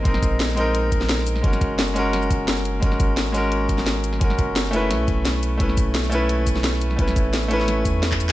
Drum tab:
HH |x-x-x-x-x-x-x-x-|x-x-x-x-x-x-x-x-|x-x-x-x-x-x-x-x-|x-x-x-x-x-x-x-x-|
SH |--x--xx---x---x-|-xx--xx--xx--xx-|--x--xx---x---x-|--x--xx---x---x-|
CP |----------------|----------------|----------------|----------------|
SD |-o--o------oo--o|-o--o---o---o---|-o--o------oo--o|-o--o---o---o---|
BD |o-o-------o-----|o-o-------o-----|o-o-------o-----|o-o-------o-----|

HH |x-x-x-x-x-x-x-x-|x-x-x-x-x-x-x-x-|
SH |--x--xx---x---x-|-xx--xx---x--xx-|
CP |----------------|-------------x-x|
SD |-o--o------oo--o|-o--o--oo---o---|
BD |o-o-------o-----|o-o-------o--o--|